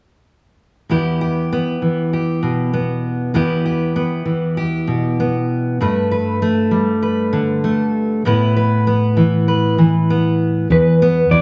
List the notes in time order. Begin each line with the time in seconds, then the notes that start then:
0.90 E2 B3 E4 G4
1.21 G4
1.52 B3
1.82 E3
2.13 G4
2.43 B2
2.74 B3
3.34 E2 B3 E4 G4
3.66 G4
3.96 B3
4.26 E3
4.57 G4
4.87 B2
5.20 B3
5.80 G2 A3 B4
6.11 B4
6.42 A3
6.71 G3
7.02 B4
7.33 D3
7.64 A3
8.25 A2 B3 E4 B4
8.57 B4
8.87 B3
9.17 E3
9.48 B4
9.78 E3
10.10 B3
10.70 E2 B4
11.02 B3
11.31 E2 E4 D5